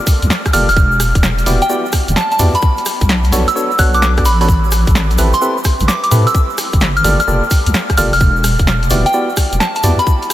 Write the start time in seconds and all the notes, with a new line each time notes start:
0.07 kick, open hi-hat, shaker
0.22 D2, closed hi-hat, shaker
0.30 snare, shaker
0.45 kick, cross-stick, closed hi-hat, shaker
0.53 F1 A#3 F4 G4 A4 D5 F6, open hi-hat, shaker
0.69 E1 F6, open hi-hat, shaker
0.77 kick, shaker
0.92 shaker
1.00 cross-stick, open hi-hat, shaker
1.15 E1, kick, closed hi-hat, shaker
1.23 snare, shaker
1.38 closed hi-hat, shaker
1.46 E1 B3 E4 F#4 G4 D5, open hi-hat, shaker
1.62 G5, closed hi-hat, shaker
1.69 B3 E4 F#4 G4 D5, shaker
1.86 shaker
1.92 kick, cross-stick, open hi-hat, shaker
2.08 E1, closed hi-hat, shaker
2.16 A5, snare, shaker
2.31 A5, closed hi-hat, shaker
2.39 E2 B3 E4 F#4 G4 D5, open hi-hat, shaker
2.54 B5, closed hi-hat, shaker
2.62 kick, shaker
2.77 closed hi-hat, shaker
2.86 cross-stick, open hi-hat, shaker
3.01 B1, kick, closed hi-hat, shaker
3.09 snare, shaker
3.24 closed hi-hat, shaker
3.32 B1 B3 D4 F#4 A4 C#5, open hi-hat, shaker
3.48 E6, closed hi-hat, shaker
3.55 B3 D4 F#4 A4 C#5, shaker
3.71 shaker
3.79 B1 B3 D4 F#4 A4 C#5 F#6, kick, open hi-hat, shaker
3.94 D6, closed hi-hat, shaker
4.02 D6, snare, shaker
4.17 B3 D4 F#4 A4 D5, kick, cross-stick, closed hi-hat, shaker
4.25 A1 B5, open hi-hat, shaker
4.41 B3 D4 F#4 A4 C#5 B5, open hi-hat, shaker
4.49 kick, shaker
4.64 shaker
4.71 cross-stick, open hi-hat, shaker
4.87 A1, kick, closed hi-hat, shaker
4.95 snare, shaker
5.11 closed hi-hat, shaker
5.18 A1 C4 E4 G4 A4 B4, open hi-hat, shaker
5.33 C6, closed hi-hat, shaker
5.41 C4 E4 G4 A4 B4, shaker
5.57 shaker
5.64 kick, cross-stick, open hi-hat, shaker
5.80 A1, closed hi-hat, shaker
5.88 D6, snare, shaker
6.03 D6, closed hi-hat, shaker
6.11 A2 C4 E4 G4 A4 B4, open hi-hat, shaker
6.27 E6, closed hi-hat, shaker
6.35 kick, shaker
6.50 shaker
6.58 cross-stick, open hi-hat, shaker
6.73 G1, kick, closed hi-hat, shaker
6.81 snare, shaker
6.97 F6, closed hi-hat, shaker
7.04 G1 A#3 F4 G4 A4 D5 F6, open hi-hat, shaker
7.20 F6, closed hi-hat, shaker
7.28 F1 A#3 F4 G4 A4 D5, shaker
7.44 shaker
7.51 kick, open hi-hat, shaker
7.66 D2, closed hi-hat, shaker
7.74 snare, shaker
7.89 kick, cross-stick, closed hi-hat, shaker
7.97 F1 A#3 F4 G4 A4 D5 F6, open hi-hat, shaker
8.13 E1 F6, open hi-hat, shaker
8.21 kick, shaker
8.36 shaker
8.44 cross-stick, open hi-hat, shaker
8.59 E1, kick, closed hi-hat, shaker
8.67 snare, shaker
8.83 closed hi-hat, shaker
8.90 E1 B3 E4 F#4 G4 D5, open hi-hat, shaker
9.06 G5, closed hi-hat, shaker
9.13 B3 E4 F#4 G4 D5, shaker
9.30 shaker
9.37 kick, cross-stick, open hi-hat, shaker
9.52 E1, closed hi-hat, shaker
9.60 A5, snare, shaker
9.75 A5, closed hi-hat, shaker
9.83 E2 B3 E4 F#4 G4 D5, open hi-hat, shaker
9.99 B5, closed hi-hat, shaker
10.07 kick, shaker
10.22 closed hi-hat, shaker
10.30 cross-stick, open hi-hat